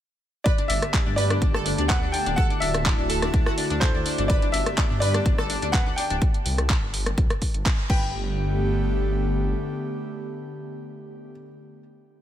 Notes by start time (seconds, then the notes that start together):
0.44 D3 A3 B3 G4 B4 D5 A5, kick, closed hi-hat
0.58 D4, closed hi-hat
0.68 G1 D4 E5, open hi-hat
0.82 cross-stick, closed hi-hat
0.94 D4, kick, clap, closed hi-hat
1.06 G2 D4
1.16 B4 D5, open hi-hat
1.30 D4, cross-stick, closed hi-hat
1.42 G1 D4, kick, closed hi-hat
1.54 A4, cross-stick
1.66 D4, open hi-hat
1.78 D2 D4, closed hi-hat
1.88 B4 F#5, kick, clap, closed hi-hat
2.02 D4
2.12 D4 G5, open hi-hat
2.26 D1 D4, closed hi-hat
2.36 E4 F#4 A4 F#5, kick, closed hi-hat
2.50 D4, closed hi-hat
2.60 D1 D4 E5, open hi-hat
2.74 cross-stick, closed hi-hat
2.86 D4, kick, clap, closed hi-hat
2.98 D1 D4
3.10 A4, open hi-hat
3.22 D4, cross-stick, closed hi-hat
3.34 D2 D4, kick, closed hi-hat
3.46 F#4, cross-stick
3.58 D4, open hi-hat
3.70 D2 D4, closed hi-hat
3.80 A4 C5, kick, clap, closed hi-hat
3.94 D4
4.06 D4, open hi-hat
4.18 G1 D4, closed hi-hat
4.28 B3 G4 B4 D5, kick, closed hi-hat
4.42 D4, closed hi-hat
4.52 G1 D4 E5, open hi-hat
4.66 cross-stick, closed hi-hat
4.78 D4, kick, clap, closed hi-hat
4.90 G2 D4
5.00 B4 D5, open hi-hat
5.14 D4, cross-stick, closed hi-hat
5.26 G1 D4, kick, closed hi-hat
5.38 A4, cross-stick
5.50 D4, open hi-hat
5.62 D2 D4, closed hi-hat
5.72 B4 F#5, kick, clap, closed hi-hat
5.86 D4
5.96 D4 G5, open hi-hat
6.10 D1 D4, closed hi-hat
6.22 kick, closed hi-hat
6.34 closed hi-hat
6.46 C2, open hi-hat
6.58 cross-stick, closed hi-hat
6.70 kick, clap, closed hi-hat
6.82 G1
6.94 open hi-hat
7.06 cross-stick, closed hi-hat
7.18 C2, kick, closed hi-hat
7.30 cross-stick, closed hi-hat
7.42 kick, open hi-hat
7.54 G1, closed hi-hat
7.66 kick, clap, closed hi-hat
7.90 G1 D3 A3 B3 G4 B4 G5, kick, crash